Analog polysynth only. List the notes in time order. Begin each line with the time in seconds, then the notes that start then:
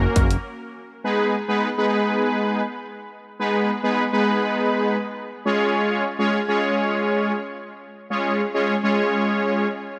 Already playing: A#3 C#4 F#4 A#4
1.04 G#3 B3 D#4 G#4 B4
1.48 G#3 B3 D#4 G#4 B4
1.78 G#3 B3 D#4 G#4 B4
3.39 G#3 B3 D#4 G#4 B4
3.83 G#3 B3 D#4 G#4 B4
4.13 G#3 B3 D#4 G#4 B4
5.45 G#3 C#4 F4 G#4 C#5
6.19 G#3 C#4 F4 G#4 C#5
6.48 G#3 C#4 F4 G#4 C#5
8.10 G#3 C#4 F4 G#4 C#5
8.54 G#3 C#4 F4 G#4 C#5
8.83 G#3 C#4 F4 G#4 C#5